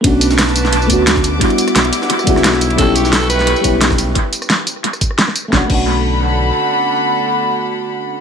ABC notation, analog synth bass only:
X:1
M:4/4
L:1/8
Q:"Swing 16ths" 1/4=175
K:Bm
V:1 name="Analog synth bass" clef=bass
B,,,4- B,,, D,,3 | z2 B,,, z2 C,, B,,,2 | B,,,4 z B,,,3 | z8 |
B,,, B,,,4- B,,, z2 | z8 |]